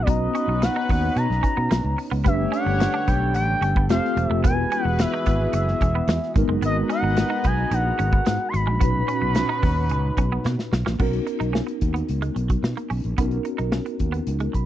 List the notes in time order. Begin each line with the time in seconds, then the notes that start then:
0.02 B3 D5
0.07 B1 B3 C#4 D#4 F#4 B4 D#5 A#5, kick, closed hi-hat
0.35 C#4, closed hi-hat
0.48 B1, muted clean electric guitar stroke
0.62 F#5, muted clean electric guitar stroke, snare, closed hi-hat
0.76 D#4
0.89 D#2 B3, kick, open hi-hat
1.16 B2 A#5, muted clean electric guitar stroke, closed hi-hat
1.30 B1, snare
1.43 C#4, kick, closed hi-hat
1.57 B2 B3
1.71 B1 A#3, snare, closed hi-hat
1.84 C#2
1.98 muted clean electric guitar stroke, open hi-hat
2.11 C#2 B3
2.24 G1 D3 G3 A3 B3 C#4 D4 G4 A4 B4 C#5 E5, kick, closed hi-hat
2.52 C#4 F#5, closed hi-hat
2.66 G1, muted clean electric guitar stroke
2.80 muted clean electric guitar stroke, snare, closed hi-hat
2.94 D4
3.07 B1 B3 G5, kick, closed hi-hat
3.34 A1 G5, muted clean electric guitar stroke, closed hi-hat
3.61 G1 C#4, closed hi-hat
3.76 B3, kick
3.89 F1 F3 A3 C4 F4 G4 A4 C5 F5, snare, closed hi-hat
4.05 snare
4.17 E1, muted clean electric guitar stroke, closed hi-hat
4.27 F1 A3 E5
4.43 E1 E3 G#3 B3 E4 F#4 G#4 A#4 B4 G#5, kick, closed hi-hat
4.52 B4
4.72 C#4, closed hi-hat
4.85 E1 F#5, muted clean electric guitar stroke
4.99 E5, muted clean electric guitar stroke, snare, closed hi-hat
5.14 D#4
5.26 G#1 B3, kick, closed hi-hat
5.53 F#1 E5, muted clean electric guitar stroke, closed hi-hat
5.68 snare
5.81 E1 C#4, kick, closed hi-hat
5.95 B3
6.08 E2 G#3, snare, closed hi-hat
6.23 snare
6.35 G#1 G#3 B3 D#4 F#4 A#4 B4 D#5 A#5, muted clean electric guitar stroke, kick, closed hi-hat
6.48 F#1 G#3
6.62 G#1 B3 D#5, closed hi-hat
6.89 C#4 F#5, closed hi-hat
7.03 G#1, muted clean electric guitar stroke
7.17 muted clean electric guitar stroke, snare, closed hi-hat
7.30 D#4
7.44 B1 B3 G#5, kick, closed hi-hat
7.71 A#1 F#5, muted clean electric guitar stroke, closed hi-hat
7.99 G#1 C#4, closed hi-hat
8.13 B3, kick
8.26 G#2 G#3, snare, closed hi-hat
8.49 C#6
8.54 G#1 B5, muted clean electric guitar stroke, closed hi-hat
8.67 A#1 G#3
8.80 B1 A#2 B3 C#4 D#4 F#4 B4, kick, closed hi-hat
9.08 C#4, closed hi-hat
9.22 B1, muted clean electric guitar stroke
9.35 muted clean electric guitar stroke, snare, closed hi-hat
9.49 D#4
9.63 D#2 B3, kick, open hi-hat
9.89 C#2, muted clean electric guitar stroke, closed hi-hat
10.17 B1 C#4, kick, closed hi-hat
10.32 B3
10.45 B2 A#3, snare
10.59 snare
10.73 B1, muted clean electric guitar stroke, snare
10.86 A#1 A#3, snare
10.98 B1 B3 C#4 D#4 F#4 A#4, kick, crash
11.13 closed hi-hat
11.27 muted clean electric guitar stroke, closed hi-hat
11.40 B1 D#4, closed hi-hat
11.53 C#4, snare
11.67 muted clean electric guitar stroke, closed hi-hat
11.81 D#2, kick, closed hi-hat
11.94 B3, closed hi-hat
12.09 C#2, closed hi-hat
12.22 G#3, closed hi-hat
12.36 B1, muted clean electric guitar stroke, closed hi-hat
12.50 F#3, kick, closed hi-hat
12.63 B2, muted clean electric guitar stroke, snare
12.77 A#3, closed hi-hat
12.90 B1 C#4, open hi-hat
13.04 A#1, closed hi-hat
13.17 B1 B3 C#4 D#4 F#4 A#4, kick, closed hi-hat
13.31 closed hi-hat
13.45 muted clean electric guitar stroke, closed hi-hat
13.58 B1 D#4, closed hi-hat
13.72 C#4, snare
13.86 muted clean electric guitar stroke, closed hi-hat
13.99 D#2, kick, closed hi-hat
14.12 B3, closed hi-hat
14.27 C#2, closed hi-hat
14.40 G#3, closed hi-hat
14.53 B1 B5, muted clean electric guitar stroke, kick, closed hi-hat